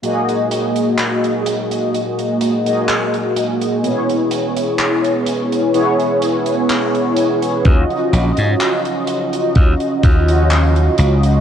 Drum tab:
HH |xxxxxxxxxxxxxxxx|xxxxxxxxxxxxxxxx|xxxxxxxxxxxxxxxx|
CP |----x-------x---|----x-------x---|----x-------x---|
BD |----------------|----------------|o-------o-o-----|